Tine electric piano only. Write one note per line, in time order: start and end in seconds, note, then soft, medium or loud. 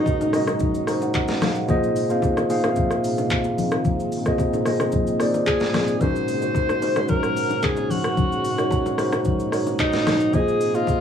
0.00 0.33 G#3 medium
0.00 0.34 D#4 medium
0.00 0.34 F#4 medium
0.00 0.35 A#4 medium
0.00 0.89 C5 loud
0.00 1.71 C#5 medium
0.00 0.27 D#5 loud
0.33 0.77 G#3 loud
0.33 0.77 D#4 medium
0.33 0.78 F#4 medium
0.33 0.78 A#4 medium
0.33 0.78 D#5 loud
0.87 1.53 G#3 medium
0.87 1.53 D#4 medium
0.87 1.53 F#4 medium
0.87 1.53 A#4 medium
0.87 1.54 C5 loud
0.87 1.01 A#5 medium
1.02 1.14 F#5 medium
1.15 1.41 D#5 medium
1.15 1.55 F#5 medium
1.42 1.55 F5 medium
1.56 1.82 F#5 medium
1.68 2.01 A#3 loud
1.68 2.01 F4 loud
1.68 2.02 G#4 loud
1.68 2.02 C5 loud
1.68 2.02 D#5 loud
2.09 2.42 A#3 medium
2.09 2.42 F4 medium
2.09 2.42 G#4 medium
2.09 2.42 C5 medium
2.09 2.43 F5 loud
2.49 2.61 A#3 medium
2.49 2.61 F4 medium
2.49 2.61 G#4 medium
2.49 2.62 C5 medium
2.49 2.62 F5 loud
2.63 3.50 A#3 medium
2.63 3.50 F4 medium
2.63 3.50 G#4 medium
2.63 3.51 C5 medium
2.63 2.71 E5 medium
2.72 3.54 F5 medium
4.25 4.58 A#3 medium
4.25 4.58 F4 medium
4.25 4.58 G#4 medium
4.25 4.59 C5 medium
4.25 4.59 D#5 loud
4.65 5.09 A#3 medium
4.65 5.10 F4 medium
4.65 5.10 G#4 medium
4.65 5.10 C5 medium
4.65 5.10 D#5 loud
5.19 5.85 A#3 medium
5.19 5.85 F4 medium
5.19 5.86 G#4 medium
5.19 5.86 C5 medium
5.19 5.86 D5 loud
6.01 6.33 G#3 medium
6.01 6.35 C#4 loud
6.01 6.34 D#4 medium
6.01 6.34 F#4 medium
6.01 6.34 A#4 medium
6.42 6.74 G#3 medium
6.42 6.74 D#4 medium
6.42 6.75 F#4 medium
6.42 6.75 A#4 medium
6.42 6.75 C5 medium
6.82 6.93 G#3 medium
6.82 6.93 D#4 medium
6.82 6.94 F#4 medium
6.82 6.94 A#4 medium
6.82 6.94 C5 loud
6.96 7.82 G#3 medium
6.96 7.82 D#4 medium
6.96 7.83 F#4 medium
6.96 7.83 A#4 medium
6.96 7.83 C#5 medium
8.58 8.90 G#3 medium
8.58 8.91 D#4 medium
8.58 8.91 F#4 medium
8.58 8.91 A#4 medium
8.58 8.91 C#5 loud
8.98 9.42 G#3 loud
8.98 9.42 D#4 medium
8.98 9.42 F#4 medium
8.98 9.43 A#4 medium
8.98 9.43 C5 loud
9.52 10.17 G#3 medium
9.52 10.18 D#4 medium
9.52 10.18 F#4 medium
9.52 10.18 A#4 medium
9.52 10.19 C#5 medium
10.33 10.66 A#3 loud
10.33 10.66 F4 medium
10.33 10.66 G#4 medium
10.33 10.67 C5 medium
10.33 10.67 D#5 loud
10.74 11.01 A#3 medium
10.74 11.01 F4 medium
10.74 11.01 G#4 medium
10.74 11.01 C5 medium
10.74 11.01 D#5 medium